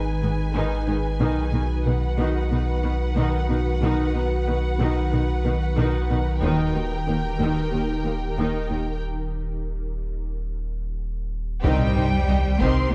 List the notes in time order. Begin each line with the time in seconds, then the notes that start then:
Already playing: G#1 D#3 D#4 G#4 B4 G#5
0.22 G#2 D#3 B3
0.55 G#2 D#3 D#4
0.87 G#2 D#3 D#4
1.20 B1 B2 D#3 D#4 F#4 B4
1.53 B2 D#3 D#4
1.85 B2 D#3 B3 F#5
2.18 B2 D#3 D#4
2.51 B2 D#3 D#4
2.83 B2 D#3 B3
3.16 B2 D#3 D#4
3.49 B2 D#3 D#4
3.82 B1 B2 D#3 D#4
4.14 B2 D#3 D#4
4.47 B2 D#3 B3
4.79 B2 D#3 D#4
5.12 B2 D#3 D#4
5.45 B2 D#3 B3
5.77 B2 D#3 D#4
6.10 B2 D#3 D#4
6.42 D#1 D#2 D#3 D#4 G4 A#4 G5
6.74 D#2 D#3 D#4
7.07 D#2 D#3 A#3
7.40 D#2 D#3 D#4
7.73 D#2 D#3 D#4
8.05 D#2 D#3 A#3
8.38 D#2 D#3 D#4
8.70 D#2 D#3 D#4
11.63 C2 D#3 G3 C4 D#4 G4 C5 G5, taiko, sub drop
11.96 C2 D#3 D#4 C5
12.29 C2 D#3 D#4 G4 D#5
12.61 C2 D#3 C4 D#4 G4 C6, taiko